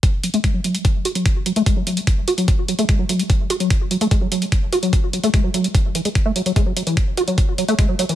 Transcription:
<<
  \new Staff \with { instrumentName = "Acid bass" } { \clef bass \time 4/4 \key fis \minor \tempo 4 = 147 r8 fis16 a16 gis16 fis16 fis16 gis16 r8 fis'16 fis16 r8 fis16 a16 | gis16 fis16 fis16 gis16 r8 fis'16 fis16 r8 fis16 a16 gis16 fis16 fis16 gis16 | r8 fis'16 fis16 r8 fis16 a16 gis16 fis16 fis16 gis16 r8 fis'16 fis16 | r8 fis16 a16 gis16 fis16 fis16 gis16 r8 e16 gis16 r16 a16 fis16 fis16 |
gis16 fis16 fis16 e16 r8 fis'16 fis16 r8 fis16 a16 gis16 fis16 fis16 e16 | }
  \new DrumStaff \with { instrumentName = "Drums" } \drummode { \time 4/4 <hh bd>8 hh16 hh16 <hh bd>8 hh16 hh16 <hh bd>8 hh16 hh16 <hh bd>8 hh16 hh16 | <hh bd>8 hh16 hh16 <hh bd>8 hh16 hh16 <hh bd>8 hh16 hh16 <hh bd>8 hh16 hh16 | <hh bd>8 hh16 hh16 <hh bd>8 hh16 hh16 <hh bd>8 hh16 hh16 <hh bd>8 hh16 hh16 | <hh bd>8 hh16 hh16 <hh bd>8 hh16 hh16 <hh bd>8 hh16 hh16 <hh bd>8 hh16 hh16 |
<hh bd>8 hh16 hh16 <hh bd>8 hh16 hh16 <hh bd>8 hh16 hh16 <hh bd>8 hh16 hh16 | }
>>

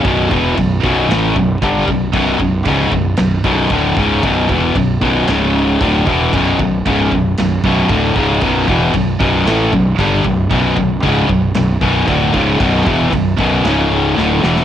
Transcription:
<<
  \new Staff \with { instrumentName = "Distorted electric guitar" } { \clef bass \time 4/4 \key b \minor \tempo 4 = 115 <b,, fis, b,>8 <e, b, e>8 <b,, fis,>8 <b,, fis, b,>8 <a, e a>8 <b,, fis,>8 <g, d g>8 <b,, fis,>8 | <b,, fis, b,>8 <b,, fis,>8 <cis, gis, cis>8 <b,, fis,>8 <b,, fis,>8 <b,, fis, b,>8 <d, a, d>8 <cis, gis, cis>8 | <b,, fis, b,>8 <e, b, e>8 <b,, fis,>8 <b,, fis, b,>8 <cis, gis, cis>4 <d, a, d>8 <e, b, e>8 | <b,, fis, b,>8 <b,, fis,>8 <cis, gis, cis>8 <b,, fis,>8 <b,, fis,>8 <b,, fis, b,>8 <d, a, d>8 <cis, gis, cis>8 |
<b,, fis, b,>8 <e, b, e>8 <b,, fis,>8 <b,, fis, b,>8 <a, e a>8 <b,, fis,>8 <g, d g>8 <b,, fis,>8 | <b,, fis, b,>8 <b,, fis,>8 <cis, gis, cis>8 <b,, fis,>8 <b,, fis,>8 <b,, fis, b,>8 <d, a, d>8 <cis, gis, cis>8 | <b,, fis, b,>8 <e, b, e>8 <b,, fis,>8 <b,, fis, b,>8 <cis, gis, cis>4 <d, a, d>8 <e, b, e>8 | }
  \new Staff \with { instrumentName = "Distorted electric guitar" } { \clef bass \time 4/4 \key b \minor <b,, fis, b,>8 <e, b, e>8 <b,, fis,>8 <b,, fis, b,>8 <a, e a>8 <b,, fis,>8 <g, d g>8 <b,, fis,>8 | <b,, fis, b,>8 <b,, fis,>8 <cis, gis, cis>8 <b,, fis,>8 <b,, fis,>8 <b,, fis, b,>8 <d, a, d>8 <cis, gis, cis>8 | <b,, fis, b,>8 <e, b, e>8 <b,, fis,>8 <b,, fis, b,>8 <cis, gis, cis>4 <d, a, d>8 <e, b, e>8 | <b,, fis, b,>8 <b,, fis,>8 <cis, gis, cis>8 <b,, fis,>8 <b,, fis,>8 <b,, fis, b,>8 <d, a, d>8 <cis, gis, cis>8 |
<b,, fis, b,>8 <e, b, e>8 <b,, fis,>8 <b,, fis, b,>8 <a, e a>8 <b,, fis,>8 <g, d g>8 <b,, fis,>8 | <b,, fis, b,>8 <b,, fis,>8 <cis, gis, cis>8 <b,, fis,>8 <b,, fis,>8 <b,, fis, b,>8 <d, a, d>8 <cis, gis, cis>8 | <b,, fis, b,>8 <e, b, e>8 <b,, fis,>8 <b,, fis, b,>8 <cis, gis, cis>4 <d, a, d>8 <e, b, e>8 | }
  \new Staff \with { instrumentName = "Distorted electric guitar" } { \clef bass \time 4/4 \key b \minor r1 | r1 | r1 | <b,, fis, b,>8 <b,, fis,>8 <cis, gis, cis>8 <b,, fis,>8 <b,, fis,>8 <b,, fis, b,>8 <d, a, d>8 <cis, gis, cis>8 |
<b,, fis, b,>8 <e, b, e>8 <b,, fis,>8 <b,, fis, b,>8 <a, e a>8 <b,, fis,>8 <g, d g>8 <b,, fis,>8 | <b,, fis, b,>8 <b,, fis,>8 <cis, gis, cis>8 <b,, fis,>8 <b,, fis,>8 <b,, fis, b,>8 <d, a, d>8 <cis, gis, cis>8 | <b,, fis, b,>8 <e, b, e>8 <b,, fis,>8 <b,, fis, b,>8 <cis, gis, cis>4 <d, a, d>8 <e, b, e>8 | }
  \new Staff \with { instrumentName = "Fingered electric bass" } { \clef bass \time 4/4 \key b \minor b,,,8 e,,8 b,,,8 b,,,8 a,,8 b,,,8 g,,8 b,,,8 | b,,,8 b,,,8 cis,,8 b,,,8 b,,,8 b,,,8 d,,8 cis,,8 | b,,,8 e,,8 b,,,8 b,,,8 cis,,4 d,,8 e,,8 | b,,,8 b,,,8 cis,,8 b,,,8 b,,,8 b,,,8 d,,8 cis,,8 |
b,,,8 e,,8 b,,,8 b,,,8 a,,8 b,,,8 g,,8 b,,,8 | b,,,8 b,,,8 cis,,8 b,,,8 b,,,8 b,,,8 d,,8 cis,,8 | b,,,8 e,,8 b,,,8 b,,,8 cis,,4 d,,8 e,,8 | }
  \new DrumStaff \with { instrumentName = "Drums" } \drummode { \time 4/4 <cymc bd>8 bd8 <cymc bd>8 bd8 <cymc sn>8 bd8 <cymc bd>8 bd8 | <cymc bd>8 bd8 <cymc bd>8 bd8 <cymc sn>8 bd8 <cymc bd>8 bd8 | <cymc bd>8 bd8 <cymc bd>8 bd8 <cymc sn>4 <cymc bd>8 bd8 | <cymc bd>8 bd8 <cymc bd>8 bd8 <cymc sn>8 bd8 <cymc bd>8 bd8 |
<cymc bd>8 bd8 <cymc bd>8 bd8 <cymc sn>8 bd8 <cymc bd>8 bd8 | <cymc bd>8 bd8 <cymc bd>8 bd8 <cymc sn>8 bd8 <cymc bd>8 bd8 | <cymc bd>8 bd8 <cymc bd>8 bd8 <cymc sn>4 sn8 sn16 sn16 | }
>>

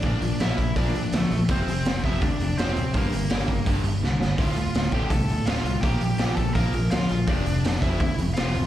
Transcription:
<<
  \new Staff \with { instrumentName = "Lead electric guitar" } { \time 4/4 \key bes \lydian \tempo 4 = 166 <d' d''>4 <e' e''>4 <d' d''>4 <a a'>8. r16 | <c' c''>4. <e' e''>8 <d' d''>4 <c' c''>4 | <bes bes'>2 r2 | <f' f''>4. <g' g''>8 <a' a''>4 <f' f''>4 |
<g' g''>4. <a' a''>8 <bes' bes''>4 <f' f''>4 | <d' d''>4. <e' e''>4 r8 <f' f''>4 | }
  \new Staff \with { instrumentName = "Distorted electric guitar" } { \clef bass \time 4/4 \key bes \lydian <bes, f bes>8 <bes, f>8 <bes, f bes>8 <bes, f>8 <bes, f bes>8 <bes, f>8 <bes, f>8 <bes, f>8 | <f, c f>8 <f, c>8 <f, c>8 <f, c f>8 <f, c>8 <f, c>8 <f, c f>8 <f, c>8 | <g, d g>8 <g, d>8 <g, d g>8 <g, d>8 <g, d g>8 <g, d>8 <g, d>8 <g, d>8 | <d, a, d>8 <d, a,>8 <d, a,>8 <d, a, d>8 <d, a,>8 <d, a,>8 <d, a, d>8 <d, a,>8 |
<bes, f bes>8 <bes, f>8 <bes, f bes>8 <bes, f>8 <bes, f bes>8 <bes, f>8 <bes, f>8 <bes, f>8 | <f, c f>8 <f, c>8 <f, c>8 <f, c f>8 <f, c>8 <f, c>8 <f, c f>8 <f, c>8 | }
  \new Staff \with { instrumentName = "Picked electric bass" } { \clef bass \time 4/4 \key bes \lydian bes,,8 bes,,8 bes,,8 bes,,8 bes,,8 bes,,8 d,8 bes,,8 | f,,8 f,,8 f,,8 f,,8 d,8 f,,8 f,,8 d,,8 | g,,8 g,,8 g,,8 g,,8 g,,8 g,,8 c,8 g,,8 | d,,8 d,,8 d,,8 d,,8 c,8 d,,8 d,,8 c,8 |
bes,,8 bes,,8 bes,,8 bes,,8 bes,,8 bes,,8 d,8 bes,,8 | f,,8 f,,8 f,,8 f,,8 d,8 f,,8 f,,8 d,,8 | }
  \new DrumStaff \with { instrumentName = "Drums" } \drummode { \time 4/4 <hho bd>8 hho8 <hho sn>8 <hho bd>8 <hho bd>8 hho8 <hho sn>8 hho8 | <hho bd>8 hho8 <hho sn>8 <hho bd>8 <hho bd>8 hho8 <hho sn>8 hho8 | <hho bd>8 hho8 <hho sn>8 <hho bd>8 <hho bd>8 hho8 sn8 sn8 | <hho bd>8 hho8 <hho sn>8 <hho bd>8 <hho bd>8 hho8 <hho sn>8 hho8 |
<hho bd>8 hho8 <hho sn>8 <hho bd>8 <hho bd>8 hho8 <hho sn>8 hho8 | <hho bd>8 hho8 <hho sn>8 <hho bd>8 <hho bd>8 hho8 <hho sn>8 hho8 | }
>>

